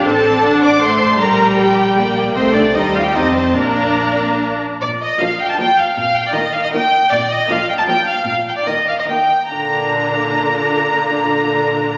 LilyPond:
<<
  \new Staff \with { instrumentName = "Violin section" } { \time 3/4 \key bes \major \tempo 4 = 151 a''4. d'''8 c'''4 | bes''4 g''4. r8 | c''8 d''8 ees''8 f''16 g''16 ees''8 c''8 | bes'2 r4 |
d''8 ees''8 f''8 g''16 a''16 g''8 f''8 | f''8 g''16 d''16 ees''8 f''16 ees''16 g''4 | d''8 ees''8 f''8 g''16 a''16 g''8 f''8 | f''8 g''16 d''16 ees''8 f''16 ees''16 g''4 |
bes''2.~ | bes''2. | }
  \new Staff \with { instrumentName = "Violin section" } { \time 3/4 \key bes \major << { a''4 fis''4 fis''8 a''8 | g''2 g''4 | g''4 g''4 a''4 | bes''2~ bes''8 r8 |
r4 <d' bes'>4 <d' bes'>4 | r4 <ees' bes'>4 <ees' bes'>4 | r4 <d' bes'>4 <d' bes'>4 | r4 <ees' bes'>4 <ees' bes'>4 |
<f' bes'>2.~ | <f' bes'>2. | } \\ { c''8 d''8 d''8 c''8 c''4 | d''2 d''4 | ees''8 d''8 c''4 c''4 | d''2~ d''8 r8 |
r2. | r2. | r2. | r2. |
r2. | r2. | } >> }
  \new Staff \with { instrumentName = "Cello section" } { \time 3/4 \key bes \major a'4. d''8 c''4 | bes'4 g'4. r8 | c'8 d'8 ees'8 f'16 g'16 ees'8 c'8 | bes2 r4 |
bes,4 r2 | bes,4 r2 | bes,4 r2 | bes,4 r2 |
bes,2.~ | bes,2. | }
  \new Staff \with { instrumentName = "Viola section" } { \time 3/4 \key bes \major c'4 d'4 a4 | g2 bes4 | a4 g4 c'4 | d'2~ d'8 r8 |
r4 <f bes>4 <f bes>4 | r4 <ees bes>4 <ees bes>4 | r4 <f bes>4 <f bes>4 | r4 <ees bes>4 <ees bes>4 |
<d d'>2.~ | <d d'>2. | }
  \new Staff \with { instrumentName = "Double bass section" } { \clef bass \time 3/4 \key bes \major a,,2. | bes,,2. | c,4 ees,4 f,4 | bes,,2~ bes,,8 r8 |
r2. | r2. | r2. | r2. |
r2. | r2. | }
>>